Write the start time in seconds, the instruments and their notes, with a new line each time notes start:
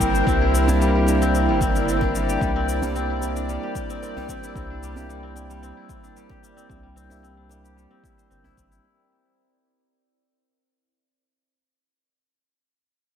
Already playing: tine electric piano G3 A#3 C4 D4 E4, guzheng G3 D4 E4 G4 C5, synth drone E4 A#4 C5 G5
0.00 sub bass G1, guzheng C4, kick, shaker
0.13 guzheng C5, djembe tone, shaker
0.26 sub bass C2, tine electric piano G3 A#3 C4 D4 E4, guzheng C4, synth drone D5, kick, shaker
0.41 guzheng E4
0.54 guzheng C4, shaker
0.67 tine electric piano G3 A#3 C4 D4 E4, guzheng D4, djembe tone, djembe bass, shaker
0.81 guzheng G3, shaker
0.95 guzheng G4
1.05 tine electric piano G3 A#3 C4 D4 E4, guzheng G3, djembe slap, djembe tone, shaker
1.22 guzheng C4, shaker
1.35 guzheng C4, shaker
1.48 sub bass G1, guzheng G3
1.61 guzheng C4, kick, djembe tone, shaker
1.75 guzheng E4, djembe tone, shaker
1.88 guzheng C4, shaker
2.01 guzheng D4, kick, djembe slap
2.15 guzheng G3, shaker
2.29 guzheng G4, shaker
2.41 sub bass C2, tine electric piano G3 A#3 C4 D4 E4, guzheng G3, kick, shaker
2.56 guzheng C4
2.69 guzheng C4, shaker
2.82 tine electric piano G3 A#3 C4 D4 E4, guzheng G3, djembe tone, djembe bass, shaker
2.96 guzheng C4, shaker
3.10 guzheng E4
3.20 tine electric piano G3 A#3 C4 D4, guzheng C4, djembe slap, djembe tone, shaker
3.25 tine electric piano E4
3.36 guzheng D4, shaker
3.49 guzheng G3, shaker
3.63 guzheng G4, djembe slap
3.75 guzheng G3, kick, shaker
3.90 guzheng C4, shaker
4.03 guzheng C4, djembe slap, shaker
4.17 guzheng G3, djembe bass
4.29 guzheng C4, kick, shaker
4.44 guzheng E4, shaker
4.55 sub bass C2, tine electric piano G3 A#3 C4 D4 E4, guzheng C4, kick, shaker
4.70 guzheng D4
4.83 guzheng G3, shaker
4.96 tine electric piano G3 A#3 C4 D4 E4, guzheng G4, djembe tone, djembe bass, shaker
5.09 guzheng G3, shaker
5.23 guzheng C4
5.34 tine electric piano G3 A#3 C4 D4, guzheng C4, djembe slap, djembe tone, shaker
5.38 tine electric piano E4
5.50 guzheng G3, shaker
5.63 guzheng C4, shaker
5.77 guzheng E4
5.88 guzheng C4, kick, djembe tone, shaker
6.03 guzheng D4, djembe tone, shaker
6.16 guzheng G3, shaker
6.29 guzheng G4, kick, djembe slap
6.43 guzheng G3, shaker
6.57 guzheng C4, shaker
6.69 sub bass C2, tine electric piano G3 A#3 C4 D4 E4, guzheng C4, kick, shaker
6.83 guzheng G3
6.96 guzheng C4, shaker
7.09 tine electric piano G3 A#3 C4 D4 E4, guzheng E4, djembe tone, djembe bass, shaker
7.23 guzheng C4, shaker
7.37 guzheng D4
7.48 tine electric piano G3 A#3 C4 D4 E4, guzheng G3, djembe slap, djembe tone, shaker
7.64 guzheng G4, shaker
7.77 guzheng G3, shaker
7.91 guzheng C4, djembe slap
8.04 guzheng E4, kick, djembe tone, shaker
8.17 guzheng C5, shaker
8.30 sub bass G1, guzheng C4, djembe slap, shaker
8.44 guzheng E4, djembe bass
8.57 sub bass G1, guzheng C4, kick, shaker
8.71 guzheng E4, shaker